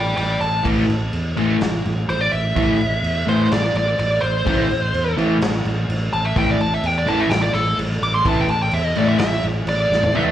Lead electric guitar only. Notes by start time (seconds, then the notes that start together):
Already playing: D5 G5
0.17 D5 G5
0.41 A5
2.10 C5
2.21 D5
2.32 E5
3.29 C5
3.53 D5
3.77 D5
3.99 D5
4.22 C5
6.13 A5
6.25 E5
6.38 G5
6.50 D5
6.61 A5
6.74 E5
6.86 G5
6.98 D5
7.09 A5
7.19 E5
7.30 G5
7.42 D5
7.54 A4
8.03 D6
8.15 C6
8.28 A5
8.41 G5
8.50 A5
8.62 G5
8.74 E5
8.84 D#5
8.98 D5
9.09 E5
9.20 E5
9.69 D5
10.17 E5